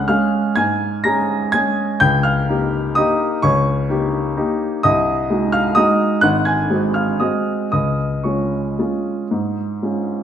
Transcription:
0.08 0.52 G#3 medium
0.08 0.53 C#4 medium
0.08 0.53 G#4 medium
0.08 0.53 F5 medium
0.08 0.56 F6 medium
0.56 1.03 G#2 medium
0.56 1.01 G#5 medium
0.56 1.04 G#6 medium
1.04 1.50 G#3 soft
1.04 1.50 C#4 soft
1.04 1.51 G#4 medium
1.04 1.51 A#5 medium
1.04 1.54 A#6 medium
1.52 1.97 G#3 medium
1.52 1.98 C#4 medium
1.52 1.97 G#4 medium
1.52 1.98 G#5 medium
1.52 2.00 G#6 loud
2.00 2.47 C#2 medium
2.00 2.23 G5 medium
2.00 2.24 G6 loud
2.23 2.93 F5 medium
2.23 2.96 F6 medium
2.49 2.93 A#3 soft
2.49 2.93 D#4 medium
2.49 2.93 G4 medium
2.95 3.40 A#3 medium
2.95 3.40 D#4 medium
2.95 3.40 G4 medium
2.95 3.40 D#5 medium
2.95 3.43 D#6 loud
3.42 3.88 C#2 medium
3.42 4.79 C#5 medium
3.42 4.83 C#6 loud
3.89 4.33 A#3 soft
3.89 4.33 D#4 medium
3.89 4.33 G4 medium
4.37 4.79 A#3 medium
4.37 4.79 D#4 medium
4.37 4.79 G4 medium
4.83 5.28 C2 medium
4.83 5.49 D#5 medium
4.83 5.52 D#6 loud
5.30 5.73 G#3 medium
5.30 5.73 D#4 soft
5.30 5.73 F#4 medium
5.52 5.75 F5 medium
5.52 5.76 F6 medium
5.75 6.19 G#3 medium
5.75 6.19 D#4 medium
5.75 6.20 F#4 medium
5.75 6.20 D#5 medium
5.75 6.22 D#6 loud
6.21 6.69 G#1 medium
6.21 6.45 F#5 medium
6.21 6.45 F#6 loud
6.45 6.92 G#5 medium
6.45 6.95 G#6 medium
6.70 7.17 G#3 soft
6.70 7.18 C4 soft
6.70 7.18 F#4 medium
6.94 7.19 F5 medium
6.94 7.21 F6 medium
7.20 7.69 G#3 soft
7.20 7.69 C4 soft
7.20 7.69 F#4 soft
7.20 7.69 D#5 medium
7.20 7.70 D#6 medium
7.72 8.23 C#2 medium
7.72 8.21 D#5 medium
7.72 8.24 D#6 medium
8.23 8.74 G#3 soft
8.23 8.74 C#4 soft
8.23 8.74 F4 soft
8.23 10.23 C#5 soft
8.23 10.23 C#6 soft
8.79 9.27 G#3 soft
8.79 9.27 C#4 soft
8.79 9.27 F4 soft
9.31 9.81 G#2 medium
9.83 10.23 G#3 soft
9.83 10.23 C#4 soft
9.83 10.23 F4 soft

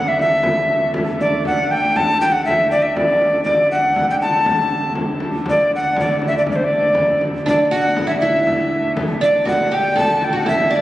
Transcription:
0.00 3.46 D3 medium
0.00 3.46 A3 medium
0.08 0.20 E5 medium
0.19 0.91 E5 medium
0.19 frame drum medium
0.43 frame drum medium
0.70 frame drum soft
0.94 frame drum medium
1.20 1.44 D5 medium
1.20 frame drum medium
1.45 1.72 F#5 loud
1.45 frame drum medium
1.71 1.98 G5 medium
1.71 frame drum soft
1.96 2.20 A5 medium
1.96 frame drum medium
2.21 2.33 G5 medium
2.21 frame drum medium
2.32 2.45 F#5 medium
2.45 2.69 E5 medium
2.45 frame drum medium
2.71 2.84 D5 medium
2.82 2.98 E5 medium
2.96 3.43 D5 medium
2.96 frame drum medium
3.22 frame drum soft
3.44 7.48 D3 medium
3.44 7.48 A3 medium
3.44 3.68 D5 medium
3.44 frame drum medium
3.71 4.06 F#5 medium
3.71 frame drum soft
3.96 frame drum medium
4.10 4.15 G5 medium
4.22 4.93 A5 medium
4.22 frame drum medium
4.46 frame drum medium
4.71 frame drum soft
4.95 frame drum medium
5.20 frame drum medium
5.46 frame drum medium
5.50 5.71 D5 medium
5.72 5.97 F#5 medium
5.72 frame drum soft
5.96 6.22 D5 medium
5.96 frame drum medium
6.22 frame drum medium
6.27 6.36 E5 medium
6.38 6.43 D5 medium
6.46 frame drum medium
6.52 6.57 D5 medium
6.56 6.66 C5 medium
6.65 7.24 D5 medium
6.71 frame drum soft
6.95 frame drum medium
7.21 frame drum medium
7.46 10.81 D3 medium
7.46 10.81 A3 medium
7.46 7.71 D4 medium
7.46 7.71 D5 medium
7.46 frame drum medium
7.71 8.06 F#4 medium
7.71 8.06 F#5 loud
7.71 frame drum soft
7.96 frame drum medium
8.07 8.19 E4 medium
8.07 8.14 E5 medium
8.21 8.93 E4 medium
8.21 8.92 E5 medium
8.21 frame drum medium
8.47 frame drum medium
8.72 frame drum soft
8.97 frame drum medium
9.21 9.45 D4 medium
9.21 9.46 D5 medium
9.45 9.71 F#4 medium
9.45 9.75 F#5 medium
9.45 frame drum medium
9.72 9.95 G4 medium
9.72 9.98 G5 medium
9.72 frame drum soft
9.96 10.32 A4 medium
9.96 10.26 A5 loud
9.96 frame drum medium
10.21 10.38 G5 medium
10.21 frame drum medium
10.33 10.46 F#4 medium
10.33 10.48 F#5 medium
10.46 10.70 E4 medium
10.46 10.77 E5 medium
10.46 frame drum medium
10.71 10.81 D4 medium
10.76 10.81 D5 medium

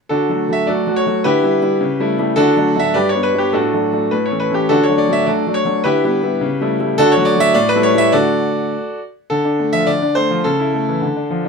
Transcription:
0.09 0.29 D3 medium
0.09 0.51 D4 medium
0.09 0.29 F#4 medium
0.09 0.53 A4 medium
0.29 0.47 F#3 soft
0.29 0.47 A3 soft
0.29 0.47 F#4 soft
0.49 0.66 F#3 soft
0.49 0.66 A3 soft
0.49 0.67 F#4 soft
0.49 0.67 E5 medium
0.67 0.85 F#3 soft
0.67 0.85 A3 soft
0.67 0.86 F#4 medium
0.67 0.95 A4 medium
0.67 0.96 D5 medium
0.87 1.04 F#3 soft
0.87 1.04 A3 soft
0.87 1.04 F#4 medium
0.96 1.25 C#5 medium
1.06 1.23 F#3 soft
1.06 1.23 A3 soft
1.06 1.23 F#4 medium
1.24 1.43 D3 medium
1.24 1.43 E4 medium
1.24 2.05 G4 medium
1.24 2.08 B4 medium
1.43 1.60 G3 medium
1.43 1.61 E4 medium
1.62 1.79 G3 soft
1.62 1.79 E4 medium
1.81 1.99 C#3 medium
2.00 2.16 G3 medium
2.00 2.17 A3 medium
2.00 2.17 E4 medium
2.18 2.35 G3 medium
2.18 2.36 A3 medium
2.18 2.36 E4 medium
2.36 2.55 D3 medium
2.36 2.56 D4 medium
2.36 2.77 F#4 medium
2.36 2.79 A4 loud
2.57 2.74 F#3 medium
2.57 2.74 A3 medium
2.57 2.74 D4 medium
2.76 2.93 F#3 soft
2.76 2.93 A3 soft
2.76 2.93 D4 medium
2.76 2.94 E5 medium
2.94 3.14 G2 medium
2.94 3.09 G4 medium
2.94 3.09 B4 medium
2.94 3.09 D5 medium
3.09 3.24 C#5 medium
3.15 3.32 G3 soft
3.15 3.32 B3 soft
3.15 3.33 D4 medium
3.23 3.38 B4 medium
3.34 3.52 G3 soft
3.34 3.52 B3 soft
3.34 3.52 D4 soft
3.38 3.53 G4 medium
3.53 3.72 A2 medium
3.53 3.73 D4 medium
3.53 4.08 F#4 medium
3.53 4.12 A4 medium
3.74 3.91 F#3 soft
3.74 3.91 A3 soft
3.74 3.91 D4 soft
3.93 4.10 F#3 soft
3.93 4.10 A3 soft
3.93 4.11 D4 soft
4.11 4.31 A2 medium
4.11 4.26 B4 medium
4.26 4.41 C#5 medium
4.31 4.49 E3 soft
4.31 4.49 A3 soft
4.31 4.49 C#4 soft
4.40 4.55 B4 medium
4.50 4.68 E3 soft
4.50 4.68 A3 soft
4.50 4.68 C#4 soft
4.50 4.69 G4 medium
4.69 4.88 D3 medium
4.69 4.83 D4 medium
4.69 4.83 F#4 medium
4.69 4.84 A4 medium
4.83 4.98 C#5 medium
4.89 5.06 F#3 soft
4.89 5.07 A3 soft
4.89 5.07 D4 soft
4.98 5.13 D5 medium
5.09 5.26 F#3 soft
5.09 5.26 A3 soft
5.09 5.26 D4 soft
5.09 5.27 E5 medium
5.26 5.45 F#3 soft
5.26 5.45 A3 soft
5.26 5.45 D4 medium
5.26 5.54 F#4 medium
5.26 5.54 A4 medium
5.26 5.55 D5 medium
5.47 5.64 F#3 soft
5.47 5.64 A3 soft
5.47 5.64 D4 soft
5.54 5.84 C#5 medium
5.65 5.82 F#3 soft
5.65 5.83 A3 soft
5.65 5.83 D4 soft
5.84 6.03 D3 medium
5.84 6.04 E4 medium
5.84 6.66 G4 medium
5.84 6.69 B4 medium
6.04 6.21 G3 medium
6.04 6.21 B3 medium
6.04 6.21 E4 medium
6.23 6.40 G3 soft
6.23 6.40 B3 soft
6.23 6.40 E4 medium
6.41 6.59 C#3 medium
6.61 6.77 G3 medium
6.61 6.78 A3 medium
6.61 6.78 E4 medium
6.80 6.96 G3 medium
6.80 6.96 A3 medium
6.80 6.96 E4 medium
6.98 7.16 D3 medium
6.98 7.11 D4 medium
6.98 7.11 F#4 medium
6.98 7.12 A4 loud
7.12 7.26 C#5 loud
7.17 7.34 F#3 medium
7.17 7.34 A3 medium
7.17 7.34 F#4 medium
7.25 7.39 D5 medium
7.36 7.53 F#3 medium
7.36 7.53 A3 medium
7.36 7.54 F#4 medium
7.36 7.54 E5 loud
7.54 7.73 A2 medium
7.54 7.69 D5 loud
7.69 7.83 B4 loud
7.75 7.92 G3 medium
7.75 7.92 A3 medium
7.75 7.92 E4 medium
7.83 7.98 C#5 loud
7.94 8.11 G3 medium
7.94 8.11 A3 medium
7.94 8.12 E4 medium
7.94 8.13 E5 loud
8.12 8.54 D3 medium
8.12 8.60 A3 medium
8.12 8.60 D4 medium
8.12 8.98 F#4 medium
8.12 8.98 A4 medium
8.12 9.01 D5 medium
9.30 9.86 D3 medium
9.30 9.73 A4 medium
9.45 9.68 D4 medium
9.59 9.82 A3 medium
9.73 9.96 F3 medium
9.73 9.87 E5 loud
9.87 10.43 D3 medium
9.87 10.16 D5 medium
10.02 10.25 D4 medium
10.15 10.39 A3 medium
10.15 10.44 C5 loud
10.31 10.45 F3 medium
10.44 11.00 C#3 medium
10.44 11.30 A4 medium
10.60 10.82 E4 medium
10.74 10.96 A3 soft
10.89 11.02 E3 medium
11.02 11.49 D3 medium
11.16 11.39 D4 medium
11.30 11.49 F3 medium
11.45 11.49 D4 medium

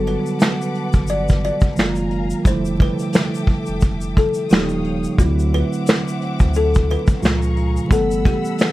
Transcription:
0.00 0.17 G1 loud
0.00 1.73 D3 medium
0.00 1.73 F#3 medium
0.00 1.74 G3 medium
0.00 1.75 B3 medium
0.00 1.75 F#4 medium
0.00 1.74 B4 medium
0.00 1.74 F#5 medium
0.00 1.73 A5 medium
0.00 1.74 D6 medium
0.07 0.58 B4 medium
0.07 closed hi-hat medium
0.26 shaker soft
0.39 finger snap medium
0.39 snare loud
0.39 closed hi-hat medium
0.39 shaker medium
0.62 shaker soft
0.75 closed hi-hat medium
0.93 1.50 G1 medium
0.93 kick medium
0.93 shaker soft
1.07 1.40 D5 medium
1.07 closed hi-hat medium
1.07 shaker medium
1.28 kick medium
1.28 snare soft
1.28 shaker soft
1.44 2.42 D5 medium
1.44 closed hi-hat medium
1.61 kick loud
1.61 shaker soft
1.76 2.33 F#1 loud
1.76 2.45 D#3 medium
1.76 2.45 F#3 soft
1.76 2.46 G#3 medium
1.76 2.46 A#3 medium
1.76 2.46 F4 medium
1.76 2.44 A#4 medium
1.76 2.44 F5 medium
1.76 2.44 G#5 medium
1.76 2.44 A#5 medium
1.76 finger snap medium
1.76 snare loud
1.76 closed hi-hat medium
1.76 shaker medium
1.95 shaker soft
2.11 closed hi-hat medium
2.30 shaker medium
2.44 2.90 F1 loud
2.44 4.45 D3 medium
2.44 4.46 F3 medium
2.44 4.46 G3 medium
2.44 4.48 A4 medium
2.44 2.77 C5 medium
2.44 4.47 E5 medium
2.44 4.48 G5 medium
2.44 4.48 D6 medium
2.44 kick loud
2.44 closed hi-hat medium
2.44 shaker medium
2.48 4.47 A3 medium
2.48 4.48 E4 medium
2.65 shaker medium
2.80 3.31 B4 medium
2.80 kick loud
2.80 closed hi-hat medium
2.99 closed hi-hat soft
2.99 shaker medium
3.13 finger snap medium
3.13 snare loud
3.13 closed hi-hat medium
3.13 shaker medium
3.34 shaker medium
3.47 kick medium
3.47 closed hi-hat medium
3.66 4.24 F1 medium
3.66 shaker soft
3.81 kick loud
3.81 closed hi-hat medium
3.81 shaker medium
4.01 shaker soft
4.17 4.51 A4 medium
4.17 kick medium
4.17 closed hi-hat medium
4.34 shaker medium
4.39 closed hi-hat soft
4.49 5.07 D#1 loud
4.49 5.18 C#3 medium
4.49 5.18 F3 medium
4.49 5.19 G3 medium
4.49 5.19 A#3 medium
4.49 5.19 D#4 medium
4.49 4.81 G4 medium
4.49 5.17 C#5 medium
4.49 5.17 F5 medium
4.49 5.17 G5 medium
4.49 5.17 D#6 medium
4.49 snare loud
4.49 closed hi-hat medium
4.49 shaker medium
4.54 finger snap medium
4.69 shaker soft
4.84 closed hi-hat medium
5.04 shaker medium
5.16 5.63 D2 loud
5.16 7.18 D3 medium
5.16 7.19 F#3 medium
5.16 7.19 C4 medium
5.16 5.49 F#4 medium
5.16 7.20 E5 medium
5.16 7.20 F#5 medium
5.16 7.19 D6 medium
5.16 kick loud
5.16 closed hi-hat medium
5.16 shaker medium
5.20 7.19 A3 medium
5.20 7.20 C4 medium
5.20 7.21 E4 medium
5.39 shaker soft
5.54 6.04 B4 medium
5.54 closed hi-hat medium
5.73 shaker soft
5.86 finger snap medium
5.86 snare medium
5.86 closed hi-hat medium
5.86 shaker medium
6.08 shaker medium
6.22 closed hi-hat medium
6.39 6.96 D2 medium
6.39 kick medium
6.39 shaker medium
6.54 6.89 A4 medium
6.54 closed hi-hat medium
6.54 shaker medium
6.75 kick medium
6.75 shaker medium
6.90 7.88 B4 medium
6.90 closed hi-hat medium
7.07 kick loud
7.07 closed hi-hat soft
7.07 shaker soft
7.19 7.79 C#2 loud
7.19 7.90 A#2 medium
7.19 7.89 C#3 medium
7.19 7.89 F3 medium
7.19 7.90 G#3 medium
7.19 7.90 F4 medium
7.19 7.90 G#4 medium
7.19 7.89 F5 medium
7.19 7.89 A#5 medium
7.19 7.89 C#6 medium
7.19 shaker medium
7.25 finger snap medium
7.25 snare loud
7.25 closed hi-hat medium
7.42 shaker soft
7.57 closed hi-hat medium
7.77 shaker medium
7.87 8.35 G1 loud
7.87 8.72 E3 medium
7.87 8.72 G3 medium
7.87 8.72 A3 medium
7.87 8.72 B3 medium
7.87 8.72 A4 medium
7.87 8.72 F#5 medium
7.87 8.72 B5 medium
7.87 8.72 E6 medium
7.87 kick loud
7.92 8.22 A4 medium
7.92 8.72 F#5 medium
7.92 closed hi-hat medium
7.92 shaker medium
8.11 shaker medium
8.25 8.72 G4 medium
8.25 kick loud
8.25 closed hi-hat medium
8.45 shaker medium
8.59 finger snap medium
8.59 snare loud
8.59 closed hi-hat medium
8.59 shaker medium

